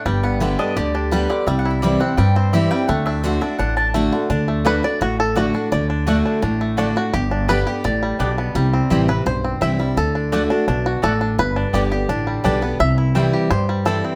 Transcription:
<<
  \new Staff \with { instrumentName = "Mandolin" } { \time 4/4 \key d \mixolydian \tempo 4 = 169 g''8 fis''8 e''8 ees''8 d''8 g'8 b'8 d''8 | \tuplet 3/2 { e''8 fis''8 e''8 } d''8 fis''8 g''8 c''8 e''8 g''8 | fis''8 e''8 c''8 e''8 fis''8 a''8 r4 | r4 <a fis' d'' fis''>16 r4. r16 <a fis' d'' fis''>16 r8. |
r4 <a fis' d'' fis''>16 r4. r16 <a fis' d'' fis''>16 r8. | r4 <b g' d'' g''>16 r4. r16 <b g' d'' g''>16 r8. | r4 <c' e' c'' g''>16 r4. r16 <c' e' c'' g''>16 r8. | r4 <a fis' d'' fis''>16 r4. r16 <a fis' d'' fis''>16 r8. |
r4 <b g' d'' g''>16 r4. r16 <b g' d'' g''>16 r8. | r4 <c' e' c'' g''>16 r4. r16 <c' e' c'' g''>16 r8. | }
  \new Staff \with { instrumentName = "Five-string banjo" } { \time 4/4 \key d \mixolydian << { r1 | r1 | r1 | r4 b'8 d''8 fis'8 a'8 fis'4 |
d''2~ d''8 r4 fis'8 | g'4 b'4 d''4 r4 | r4. b'8 c''4 e''4 | a'4 r4. fis'8 a'4 |
b'4 g'8 r2 r8 | e''2 c''4 a'8 r8 | } \\ { g8 b8 d8 d'8 g'8 d'8 g8 d8 | g8 e'8 g8 c'8 g8 c'8 g'8 g8 | a8 d'8 d8 d'8 d'8 d'8 a8 d8 | d'8 a4. r4. d'8~ |
d'8 d'8 a8 d'8 d'8 a8 d'4 | r8 d'4 g'4 g8 d'8 b8 | g8 c'8 g'4. c'4 g8 | r8 d'8 a8 d'8 d'4. d'8 |
r8 d'4 g'8 d'8 g8 d'8 b8 | r8 e'8 g8 g'4 g4 c'8 | } >> }
  \new Staff \with { instrumentName = "Steel-string acoustic guitar" } { \time 4/4 \key d \mixolydian << { r4 <d g b g'>8 <b g'>8 r4 <d g b g'>8 <b g'>8 | r4 <e g c' e'>8 <c' e'>8 r4 <e g c' e'>8 <c' e'>8 | r4 <d a d' fis'>8 <d' fis'>8 r4 <d a d' fis'>8 <d' fis'>8 | r4 <d a d' fis'>8 <d' fis'>8 r4 <d a d' fis'>8 <d' fis'>8 |
r4 <d a d' fis'>4 r4 <d a d' fis'>8 <d' fis'>8 | r4 <d g b g'>8 <b g'>8 r2 | r4 <e g c' e'>8 <c' e'>8 r4 <e g c' e'>8 <c' e'>8 | r4 <d a d' fis'>8 <d' fis'>8 r2 |
r4 <d g b g'>8 <b g'>8 r4 <d g b g'>8 <b g'>8 | r4 <e g c' e'>4 r4 <e g c' e'>4 | } \\ { g,2 d2 | c2 g,2 | d2 a,2 | d2 a,2 |
d2 a,2 | g,2 a,4 b,4 | c2 g,2 | d2 b,4 a,4 |
g,2 d2 | c2 g,2 | } >> }
  \new Staff \with { instrumentName = "Upright bass" } { \clef bass \time 4/4 \key d \mixolydian g,,2 d,2 | c,2 g,2 | d,2 a,,2 | d,2 a,,2 |
d,2 a,,2 | g,,2 a,,4 b,,4 | c,4 a,,4 b,,4 c,4 | d,2 b,,4 a,,4 |
g,,4 g,,4 a,,4 b,,4 | c,2 g,2 | }
>>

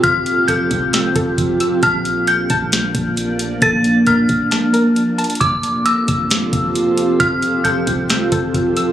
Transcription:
<<
  \new Staff \with { instrumentName = "Synth bell" } { \time 4/4 \key f \major \tempo 4 = 134 f'''4 g'''2 r4 | f'''4 g'''2 r4 | a'''4 f'''2 r4 | d'''4 e'''2 r4 |
f'''4 g'''2 r4 | }
  \new Staff \with { instrumentName = "Synth pluck" } { \time 4/4 \key f \major <f' e'''>4 a'4 e'''8 a'4 e'''8 | a''4. a''2~ a''8 | a'4 bes'4 a''8 bes'4 a''8 | e'''4. e'''2~ e'''8 |
f'4 a'4 e'''8 a'4 e'''8 | }
  \new Staff \with { instrumentName = "Ambient pad" } { \time 4/4 \key f \major <f c' f' g' a'>1 | <f bes d'>1~ | <f bes d'>1 | <f c' f' g' a'>1~ |
<f c' f' g' a'>1 | }
  \new Staff \with { instrumentName = "808-style bass" } { \clef bass \time 4/4 \key f \major f,,4 f,,8 c,4 f,,8 f,,4 | bes,,4. bes,,4 bes,,4. | bes,,4 bes,,8 bes,,8 r2 | f,,4 r8 f,,4 f,,4. |
f,,4 f,,8 c,4 f,,8 f,,4 | }
  \new DrumStaff \with { instrumentName = "Drums" } \drummode { \time 4/4 <hh bd>8 hh8 hh8 <hh bd>8 <hh sn>8 <hh bd>8 <hh bd>8 hh8 | <hh bd>8 hh8 hh8 <hh bd>8 <hh sn>8 <hh bd>8 hh8 hh8 | <hh bd>8 hh8 hh8 <hh bd>8 <hh sn>8 hh8 hh8 hh32 hh32 hh32 hh32 | <hh bd>8 hh8 hh8 <hh bd>8 <hh sn>8 <hh bd>8 hh8 hh8 |
<hh bd>8 hh8 hh8 <hh bd>8 <hh sn>8 <hh bd>8 <hh bd>8 hh8 | }
>>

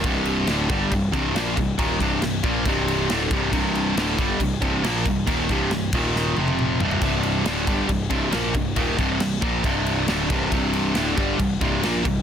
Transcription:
<<
  \new Staff \with { instrumentName = "Distorted electric guitar" } { \clef bass \time 4/4 \key c \minor \tempo 4 = 137 <c, g, c>4 <d, a, d>8 <g, d g>8 <c, g,>8 <c, g, c>8 <bes, f bes>8 <c, g,>8 | <ees, bes, ees>8 <c, g, c>8 <c, g,>8 <bes, f bes>8 <c, g, c>4 <d, a, d>8 <c, g, c>8 | <c, g, c>4 <d, a, d>8 <g, d g>8 <c, g,>8 <c, g, c>8 <bes, f bes>8 <c, g,>8 | <ees, bes, ees>8 <c, g, c>8 <c, g,>8 <ees, bes, ees>4 <f, c f>4 <c, g, c>8 |
<c, g, c>4 <d, a, d>8 <g, d g>8 <c, g,>8 <c, g, c>8 <bes, f bes>8 <c, g,>8 | <ees, bes, ees>8 <c, g, c>8 <c, g,>8 <bes, f bes>8 <c, g, c>4 <d, a, d>8 <c, g, c>8 | <c, g, c>4 <d, a, d>8 <g, d g>8 <c, g,>8 <c, g, c>8 <bes, f bes>8 <c, g,>8 | }
  \new Staff \with { instrumentName = "Picked electric bass" } { \clef bass \time 4/4 \key c \minor c,,4 d,,8 g,,8 c,,8 c,,8 bes,,8 c,,8 | ees,,8 c,,8 c,,8 bes,,8 c,,4 d,,8 c,,8 | c,,4 d,,8 g,,8 c,,8 c,,8 bes,,8 c,,8 | ees,,8 c,,8 c,,8 ees,,4 f,,4 c,,8 |
c,,4 d,,8 g,,8 c,,8 c,,8 bes,,8 c,,8 | ees,,8 c,,8 c,,8 bes,,8 c,,4 d,,8 c,,8 | c,,4 d,,8 g,,8 c,,8 c,,8 bes,,8 c,,8 | }
  \new DrumStaff \with { instrumentName = "Drums" } \drummode { \time 4/4 <cymc bd>8 cymc8 <cymc sn>8 <cymc bd>8 <cymc bd>8 <cymc bd>8 <cymc sn>8 <cymc bd>8 | <cymc bd>8 <cymc bd>8 <cymc sn>8 <cymc bd>8 <cymc bd>8 cymc8 <cymc sn>8 <cymc bd>8 | <cymc bd>8 cymc8 <cymc sn>8 <cymc bd>8 <cymc bd>8 <cymc bd>8 <cymc sn>8 <cymc bd>8 | <cymc bd>8 <cymc bd>8 <cymc sn>8 <cymc bd>8 sn8 tommh16 tommh16 toml8 tomfh16 tomfh16 |
<cymc bd>8 cymc8 <cymc sn>8 <cymc bd>8 <cymc bd>8 <cymc bd>8 <cymc sn>8 <cymc bd>8 | <cymc bd>8 <cymc bd>8 <cymc sn>8 <cymc bd>8 <cymc bd>8 cymc8 <cymc sn>8 <cymc bd>8 | <cymc bd>8 cymc8 <cymc sn>8 <cymc bd>8 <cymc bd>8 <cymc bd>8 <cymc sn>8 <cymc bd>8 | }
>>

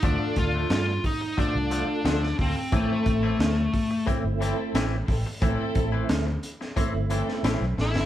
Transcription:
<<
  \new Staff \with { instrumentName = "String section" } { \time 4/4 \key a \minor \tempo 4 = 89 <d' f' a'>4 r4. <d' f' a'>8 r8 <d' f' a'>16 r16 | <c' e' a'>4 r4. <c' e' a'>8 r8 <c' e' a'>16 r16 | <c' e' a'>4 r4. <c' e' a'>8 r8 <c' e' a'>16 r16 | }
  \new Staff \with { instrumentName = "Lead electric guitar" } { \time 4/4 \key a \minor d'8 f'8 f'8 dis'8 d'4. c'8 | a2 r2 | r2. r8 e'8 | }
  \new Staff \with { instrumentName = "Tonewheel organ" } { \time 4/4 \key a \minor <a d' f'>4. r8 <a d' f'>4. r8 | <a c' e'>4. r8 <a c' e'>4. r8 | <a c' e'>4. r8 <a c' e'>4. r8 | }
  \new Staff \with { instrumentName = "Clean electric guitar" } { \time 4/4 \key a \minor <d f a d'>16 r8 <f a d'>16 r4 <d f a d'>16 r16 <d f a d'>16 r16 <d f a d'>16 r8. | <a, e c' e'>16 r8 <e c' e'>16 r4 <a, e c' e'>16 r16 <a, e c' e'>16 r16 <a, e c' e'>16 r8. | <a, e c' e'>16 r8 <e c' e'>16 r4 <a, e c' e'>16 r16 <a, e c' e'>16 r16 <a, e c' e'>16 r8. | }
  \new Staff \with { instrumentName = "Fingered electric bass" } { \clef bass \time 4/4 \key a \minor d,16 r16 d,8 g,8 r8. c,8 r16 d,8 d,16 r16 | a,,16 r16 a,,8 d,8 r8. g,,8 r16 a,,8 a,,16 r16 | a,,16 r16 a,,8 d,8 r8. g,,8 r16 a,,16 b,,16 a,,16 g,,16 | }
  \new DrumStaff \with { instrumentName = "Drums" } \drummode { \time 4/4 <hh bd>8 <hh bd sn>8 <hh sn>8 <hho bd>8 <hh bd>8 hh8 <hh sn>16 sn16 <hho bd>8 | <hh bd>8 <hh bd>8 <hh sn>8 <hho bd>8 <hh bd>8 hh8 <hh sn>8 <hho bd>8 | <hh bd>8 <hh bd>8 <hh sn>8 hh16 sn16 <hh bd>8 hh16 sn16 <hh sn>8 sn16 sn16 | }
>>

